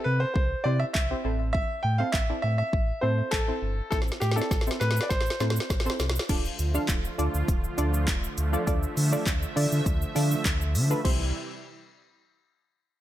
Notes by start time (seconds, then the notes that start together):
Already playing: C4 E4 G4 A4
0.04 C3 B4
0.20 C5
0.34 C2 C5, kick
0.64 C3 C4 E4 G4 C5 D5
0.80 E5
0.93 C2 E5, kick, clap
1.11 C4 E4 G4 C5
1.24 A1 C4 E4 A4 C5
1.53 E5, kick
1.83 A2 G5
1.98 C4 E4 A4 C5 F5
2.12 A1 E5, kick, clap
2.29 C4 E4 A4 D5
2.42 A2 E5
2.58 E5
2.73 A1, kick
3.01 A2 C4 E4 A4 C5
3.31 A1 A4, kick, clap
3.48 C4 E4 A4 C5
3.62 G1
3.91 A1 C4 E4 A4 C5, kick, snare, shaker
4.02 snare
4.08 shaker
4.12 snare
4.20 A2 G4, snare, shaker
4.32 snare
4.36 C4 E4 A4 D5, shaker
4.42 snare
4.51 A1, kick, snare, shaker
4.61 snare
4.67 C4 E4 A4 C5, shaker
4.71 snare
4.80 A2 B4, snare, shaker
4.91 snare
4.97 shaker
5.01 D5, snare
5.09 A1 C5, kick, snare, shaker
5.21 snare
5.26 shaker
5.30 snare
5.40 A2 C4 E4 A4 C5, snare, shaker
5.50 snare
5.56 shaker
5.60 snare
5.70 A1, kick, snare, shaker
5.80 snare
5.86 C4 E4 A4 C5, shaker
5.90 snare
6.00 C2, snare, shaker
6.10 snare
6.16 snare, shaker
6.29 D1 D3 F3 A3 D4 F4 A4 D5, kick, closed hi-hat, crash, shaker
6.45 shaker
6.59 D2, closed hi-hat, shaker
6.75 D4 F4 A4 F5, shaker
6.88 D1, kick, clap, closed hi-hat, shaker
7.05 shaker
7.18 D2 D4 F4 A4 D5, closed hi-hat, shaker
7.34 D2, shaker
7.48 D1, kick, closed hi-hat, shaker
7.64 shaker
7.78 D2 D4 F4 A4 D5, closed hi-hat, shaker
7.94 shaker
8.08 D1, kick, clap, closed hi-hat, shaker
8.24 shaker
8.38 D2, closed hi-hat, shaker
8.53 D4 F4 A4 D5, shaker
8.67 D2 D4 F4 A4 D5 E5, kick, closed hi-hat, shaker
8.83 shaker
8.97 D3, open hi-hat, shaker
9.12 D4 F4 A4 D5, shaker
9.27 D2, kick, clap, closed hi-hat, shaker
9.43 shaker
9.56 D3 D4 F4 A4 D5, open hi-hat, shaker
9.72 D3, shaker
9.86 D2, kick, closed hi-hat, shaker
10.02 shaker
10.15 D3 D4 F4 A4 D5, open hi-hat, shaker
10.32 shaker
10.45 D2, kick, clap, closed hi-hat, shaker
10.61 shaker
10.75 D3, open hi-hat, shaker
10.90 D4 F4 A4 B4, shaker
11.05 C2 C3 E3 G3 C4 E4 G4 C5, kick, crash